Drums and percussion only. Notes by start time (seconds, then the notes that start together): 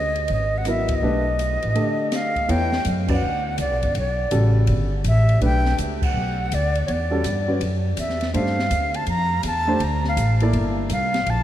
0.16 ride
0.28 ride
0.65 cross-stick, hi-hat pedal, ride
0.88 kick, ride
1.39 hi-hat pedal, ride
1.63 ride
1.75 ride
2.12 cross-stick, snare, hi-hat pedal, ride
2.36 kick, ride
2.49 ride
2.72 snare
2.85 hi-hat pedal, ride
3.08 kick, crash
3.58 hi-hat pedal, ride
3.82 kick, ride
3.95 ride
4.31 hi-hat pedal, ride
4.67 ride
5.04 hi-hat pedal, ride
5.29 ride
5.41 ride
5.65 snare
5.78 hi-hat pedal, ride
6.02 kick, crash
6.52 hi-hat pedal, ride
6.75 ride
6.88 ride
7.24 hi-hat pedal, ride
7.61 ride
7.97 hi-hat pedal, ride
8.10 snare
8.21 snare, ride
8.34 ride
8.46 snare
8.59 snare
8.71 hi-hat pedal, ride
8.94 ride
9.07 ride
9.43 hi-hat pedal, ride
9.80 ride
10.04 snare
10.17 hi-hat pedal, ride
10.40 ride
10.53 ride
10.90 hi-hat pedal, ride
11.14 snare, ride
11.26 ride